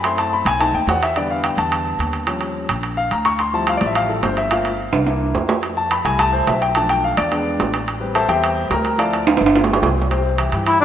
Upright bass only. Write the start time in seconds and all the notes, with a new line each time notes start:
Already playing: F#2
0.45 B1
0.73 D#2
0.87 E2
1.57 E2
1.99 D#2
2.69 A#1
3.11 D2
3.81 A1
4.23 G1
4.93 C2
5.34 F2
6.05 C2
6.47 B1
7.17 E2
7.59 A1
8.29 E2
8.70 D2
9.41 G1
9.82 C2
10.53 G2